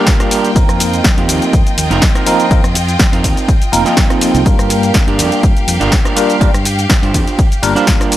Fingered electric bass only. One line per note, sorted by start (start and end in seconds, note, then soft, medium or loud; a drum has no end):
0.56 0.66 F2 loud
0.69 1.00 F2 medium
1.18 1.29 F2 medium
1.29 1.39 D#2 loud
1.53 1.63 F2 medium
1.78 1.87 D#2 medium
1.91 1.99 F1 medium
2.51 2.61 F2 loud
2.64 2.95 F2 medium
3.13 3.24 F2 medium
3.24 3.34 D#2 loud
3.62 muted fingered electric bass stroke soft
3.73 3.82 F1 medium
4.21 muted fingered electric bass stroke soft
4.35 4.43 C2 loud
4.46 4.56 G2 loud
4.59 4.90 G2 medium
5.08 5.20 G2 medium
5.19 5.29 F2 loud
5.43 5.53 G2 medium
5.68 5.78 F2 medium
5.81 5.89 G1 medium
6.41 6.51 G2 loud
6.54 6.85 G2 medium
7.03 7.16 G2 medium
7.14 7.24 F2 loud
7.52 muted fingered electric bass stroke soft
7.63 7.73 G1 loud